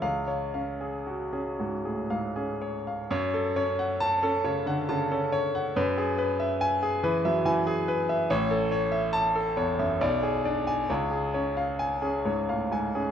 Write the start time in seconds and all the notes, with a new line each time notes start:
0.02 C#2 F5
0.28 C#5
0.54 C#4 F5
0.81 G#4
1.07 F#4
1.33 C#4 G#4
1.59 G#2 F#4
1.85 A2 G#4
2.10 G#2 F5
2.36 C#4 G#4
2.61 C#5
2.87 F5
3.11 F#2 C#5
3.34 A4
3.56 C#4 C#5
3.79 F#5
4.00 A5
4.23 C#4 A4
4.44 C#3 C#5
4.66 D3 F#5
4.89 C#3 A5
5.12 C#4 A4
5.32 C#5
5.55 F#5
5.76 F#2 B4
5.98 G#4
6.18 B4
6.40 E5
6.61 G#5
6.83 G#4
7.03 E3 B4
7.25 F#3 E5
7.45 E3 G#5
7.67 G#4
7.88 B4
8.09 E5
8.30 A1 C#5
8.51 A4
8.72 C#5
8.92 E5
9.13 A5
9.35 A4
9.57 E2 C#5
9.79 F#2 E5
10.01 B1 D5
10.23 G#4
10.45 D4 D5
10.67 G#5
10.90 C#2 C#5
11.11 G#4
11.34 C#4 C#5
11.57 F5
11.79 G#5
12.02 C#4 G#4
12.25 G#2 C#5
12.49 A2 F5
12.72 G#2 G#5
12.95 C#4 G#4